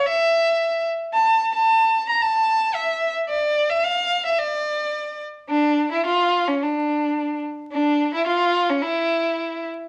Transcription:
X:1
M:2/4
L:1/16
Q:1/4=109
K:Dm
V:1 name="Violin"
e6 z2 | a3 a4 b | a4 e3 z | d3 e f3 e |
d6 z2 | D3 E F3 ^C | D6 z2 | D3 E F3 ^C |
E6 z2 |]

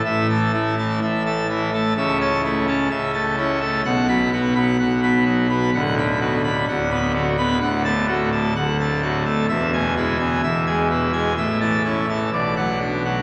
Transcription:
X:1
M:4/4
L:1/8
Q:1/4=127
K:A
V:1 name="Pipe organ"
[A,,e] [E,a] [A,E] [E,a] [A,,e] [A,a] [E,E] [A,a] | [C,e] [Ca] [A,E] [Ca] [C,e] [A,a] [CE] [A,a] | [B,,f] [F,b] [B,F] [F,b] [B,,f] [B,b] [F,F] [B,b] | [D,,f] [D,b] [B,F] [D,b] [D,,f] [B,b] [D,F] [B,b] |
[K:Emix] [D,,f] [A,,a] [A,F] [A,,a] [D,,f] [A,a] [A,,F] [A,a] | [E,,e] [B,,g] [G,E] [B,,g] [E,,e] [G,g] [B,,E] [G,g] | [A,,e] [E,a] [CE] [E,a] [B,,d] [F,f] D [F,f] |]
V:2 name="Pipe organ" clef=bass
A,,,4 A,,,4 | C,,4 C,,4 | B,,,4 B,,,4 | D,,,4 D,,,4 |
[K:Emix] D,,,4 D,,,4 | E,,,4 E,,,4 | A,,,4 B,,,4 |]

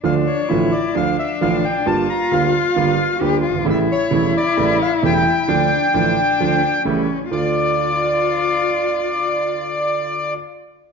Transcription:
X:1
M:4/4
L:1/16
Q:1/4=132
K:Dm
V:1 name="Bandoneon"
f2 ^c4 d2 f2 e2 f2 g2 | a2 b2 f8 z4 | e2 ^c4 d4 f2 g4- | g12 z4 |
d16- | d16 |]
V:2 name="Cello"
D4 E4 D8 | F12 G2 F2 | E16 | D4 D8 ^C4 |
F16- | F16 |]
V:3 name="Grand piano" clef=bass
[D,,D,F,A,F]2 z2 [A,,,A,,D,F,A,F]2 z2 [D,,D,F,A,F]2 z2 [A,,,A,,D,F,A,F]2 z2 | [G,,,G,,D,G,B,F]2 z2 [D,,D,G,B,F]2 z2 [G,,,G,,D,G,B,F]2 z2 [D,,D,G,B,F]2 z/2 ^F,,,/2 G,,,/2 ^G,,,/2 | [A,,,A,,^C,G,A,E]2 z2 [E,,,E,,C,G,A,E]2 z2 [A,,,A,,C,G,A,E]2 z2 [E,,,E,,C,G,A,E]2 z2 | [D,,D,F,A,F]2 z2 [A,,,A,,D,F,A,F]2 z2 [D,,D,F,A,F]2 z2 [A,,,A,,^C,G,A,E]2 z2 |
[D,,A,DF]16- | [D,,A,DF]16 |]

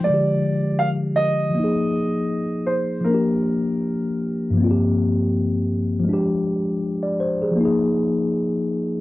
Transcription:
X:1
M:4/4
L:1/16
Q:"Swing 16ths" 1/4=80
K:Fdor
V:1 name="Upright piano"
d4 f2 e8 c2 | B12 z4 | z16 |]
V:2 name="Tine electric piano"
z16 | z16 | z4 z d c A2 z6 z |]
V:3 name="Tine electric piano"
[D,F,A,G]8 [F,B,EA]8 | [F,B,DG]8 [G,,F,B,CFG]8 | [F,A,DG]8 [F,B,EA]8 |]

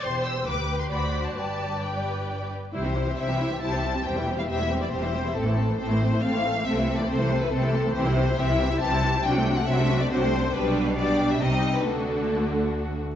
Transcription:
X:1
M:3/4
L:1/16
Q:1/4=138
K:G
V:1 name="Violin section"
c'2 e'2 d'3 c' b3 a | a4 g6 z2 | [K:C] c4 e4 a4 | g3 f e3 d c4 |
A4 c4 f4 | e3 d c3 B A4 | [K:Dmix] c4 e4 a4 | g3 f e3 d c4 |
B4 d3 e _e3 B | A8 z4 |]
V:2 name="Violin section"
[Gc]4 [GB]4 [Fc]4 | [GB]4 [GB]6 z2 | [K:C] [Ec] [Ge] [Ec] [Ge] [Ec] [Ge] [Ec] [Ge] [Ec] [Ge] [Ec] [Ge] | [Gc] [Ee] [Gc] [Ee] [Gc] [Ee] [Gc] [Ee] [Gc] [Ee] [Gc] [Ee] |
[CA] [Ec] [CA] [Ec] [CA] [Ec] [CA] [Ec] [CA] [Ec] [CA] [Ec] | [CA] [Ec] [CA] [Ec] [CA] [Ec] [CA] [Ec] [CA] [Ec] [CA] [Ec] | [K:Dmix] G [Ec] G [Ec] G [Ec] G [Ec] G [Ec] G [Ec] | [CF] [DA] [CF] [DA] [CF] [DA] [CF] [DA] [CF] [DA] [CF] [DA] |
[DG]4 [DG]4 [_EG]4 | [DF]8- [DF]2 z2 |]
V:3 name="Viola section"
c4 B4 d4 | d8- d2 z2 | [K:C] [G,E] [E,C] [G,E] [E,C] [G,E] [E,C] [G,E] [E,C] [G,E] [E,C] [G,E] [E,C] | [G,C] [E,G,] [G,C] [E,G,] [G,C] [E,G,] [G,C] [E,G,] [G,C] [E,G,] [G,C] [E,G,] |
[A,C] [E,A,] [A,C] [E,A,] [A,C] [E,A,] [A,C] [E,A,] [A,C] [E,A,] [A,C] [E,A,] | [A,C] [E,A,] [A,C] [E,A,] [A,C] [E,A,] [A,C] [E,A,] [A,C] [E,A,] [A,C] [E,A,] | [K:Dmix] [E,C] [G,E] [E,C] [G,E] [E,C] [G,E] [E,C] [G,E] [E,C] [G,E] [E,C] [G,E] | [F,D] [A,C] [F,D] [A,C] [F,D] [A,C] [F,D] [A,C] [F,D] [A,C] [F,D] [A,C] |
[G,D]4 [G,D]4 [G,C]4 | [D,A,]8- [D,A,]2 z2 |]
V:4 name="Cello section" clef=bass
E,,4 D,,4 D,,4 | G,,8- G,,2 z2 | [K:C] C,4 C,4 C,4 | E,,4 E,,4 E,,4 |
A,,4 A,,4 A,,4 | C,4 C,4 C,4 | [K:Dmix] C,4 C,4 C,4 | C,4 C,4 C,4 |
B,,8 C,4 | D,,8- D,,2 z2 |]
V:5 name="Double bass section" clef=bass
E,,,4 D,,4 D,,4 | G,,,8- G,,,2 z2 | [K:C] C,,4 C,,4 C,,4 | E,,,4 E,,,4 E,,,4 |
A,,,4 A,,,4 A,,,4 | C,,4 C,,4 C,,4 | [K:Dmix] C,,4 C,,4 C,,4 | C,,4 C,,4 C,,4 |
B,,,8 C,,4 | D,,8- D,,2 z2 |]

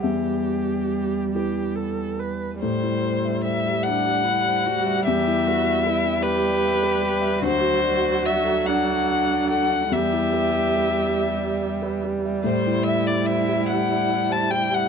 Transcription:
X:1
M:6/8
L:1/16
Q:3/8=48
K:Em
V:1 name="Violin"
z12 | c4 e2 f6 | e6 B6 | c4 e2 f4 f2 |
e8- e2 z2 | c2 e d e2 f3 a g f |]
V:2 name="Grand piano"
[E,,e]6 [EGB]6 | A,, E c e c G e d e c G, e | E,, E B e B G e d e B G e | D,, F d f d A f e f d A f |
E,, E B e B G e d e B G e | A,, E c e c G e d e c G e |]
V:3 name="Viola"
G6 G2 A2 B2 | G,12- | G,12 | F,12 |
G,12- | G,12 |]
V:4 name="Cello"
G,8- G,3 z | z6 D2 E2 F2 | G2 F2 E2 G6 | F6 D6 |
G8- G z3 | E12 |]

